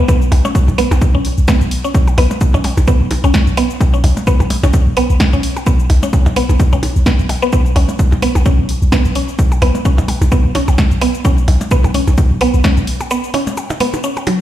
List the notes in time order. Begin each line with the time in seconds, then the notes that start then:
0.08 B3, kick, shaker
0.22 shaker
0.32 B1, open hi-hat, percussion blips
0.45 C#4, percussion blips, shaker
0.55 kick, shaker
0.68 B1, percussion blips, shaker
0.78 B3, open hi-hat, percussion blips
0.91 B1, percussion blips, shaker
1.01 kick, shaker
1.15 B1 C#4
1.25 open hi-hat
1.38 B1, shaker
1.48 B3, kick, snare, percussion blips, shaker
1.61 B1, shaker
1.71 open hi-hat
1.84 C#4, shaker
1.94 kick, shaker
2.07 percussion blips, shaker
2.18 B1 B3, open hi-hat, percussion blips
2.31 percussion blips, shaker
2.41 kick, shaker
2.54 B1 C#4, percussion blips, shaker
2.64 open hi-hat, percussion blips
2.77 B1, percussion blips, shaker
2.87 B3, kick, shaker
3.01 B1
3.11 open hi-hat, percussion blips
3.24 B1 C#4, percussion blips, shaker
3.34 kick, snare, shaker
3.47 B1, shaker
3.57 B3, open hi-hat, percussion blips
3.70 shaker
3.81 kick, percussion blips, shaker
3.94 C#4, shaker
4.04 B1, open hi-hat, percussion blips
4.17 percussion blips, shaker
4.27 B3, kick, shaker
4.40 B1, percussion blips, shaker
4.50 open hi-hat, percussion blips
4.63 B1 C#4, percussion blips, shaker
4.73 kick, shaker
4.87 B1
4.97 B3, open hi-hat, percussion blips
5.10 B1, shaker
5.20 kick, snare, shaker
5.33 B1 C#4, shaker
5.43 open hi-hat
5.56 percussion blips, shaker
5.67 B3, kick, shaker
5.80 shaker
5.90 B1, open hi-hat, percussion blips
6.03 C#4, percussion blips, shaker
6.13 kick, percussion blips, shaker
6.26 B1, percussion blips, shaker
6.36 B3, open hi-hat, percussion blips
6.49 B1, percussion blips, shaker
6.60 kick, shaker
6.73 B1 C#4, percussion blips, shaker
6.83 open hi-hat, percussion blips
6.96 B1, shaker
7.06 B3, kick, snare, shaker
7.19 B1, shaker
7.29 open hi-hat, percussion blips
7.42 B3, shaker
7.53 B3, kick, shaker
7.66 shaker
7.76 B1 C#4, open hi-hat, percussion blips
7.89 percussion blips, shaker
7.99 kick, shaker
8.12 B1, percussion blips, shaker
8.22 B3, open hi-hat, percussion blips
8.35 B1, percussion blips, shaker
8.46 C#4, kick, shaker
8.59 B1
8.69 open hi-hat
8.82 B1, shaker
8.92 B3, kick, snare, percussion blips, shaker
9.05 B1, shaker
9.15 C#4, open hi-hat
9.28 shaker
9.39 kick, shaker
9.52 percussion blips, shaker
9.62 B1 B3, open hi-hat, percussion blips
9.75 percussion blips, shaker
9.85 C#4, kick, shaker
9.98 B1, percussion blips, shaker
10.08 open hi-hat, percussion blips
10.21 B1, percussion blips, shaker
10.32 B3, kick, shaker
10.45 B1
10.55 C#4, open hi-hat, percussion blips
10.68 B1, percussion blips, shaker
10.78 kick, snare, shaker
10.91 B1, shaker
11.01 B3, open hi-hat, percussion blips
11.15 shaker
11.25 C#4, kick, percussion blips, shaker
11.38 shaker
11.48 B1, open hi-hat, percussion blips
11.61 percussion blips, shaker
11.71 B3, kick, shaker
11.84 B1, percussion blips, shaker
11.94 C#4, open hi-hat, percussion blips
12.07 B1, percussion blips, shaker
12.18 kick, shaker
12.31 B1
12.41 B3, open hi-hat, percussion blips
12.54 B1, shaker
12.64 C#4, kick, snare, shaker
12.77 B1, shaker
12.87 open hi-hat
13.00 percussion blips, shaker
13.11 B3, shaker
13.24 shaker
13.34 C#4, open hi-hat, percussion blips
13.47 percussion blips, shaker
13.57 percussion blips, shaker
13.70 percussion blips, shaker
13.80 B3, open hi-hat, percussion blips
13.93 percussion blips, shaker
14.04 C#4, shaker
14.17 percussion blips, shaker
14.27 F#3, open hi-hat, percussion blips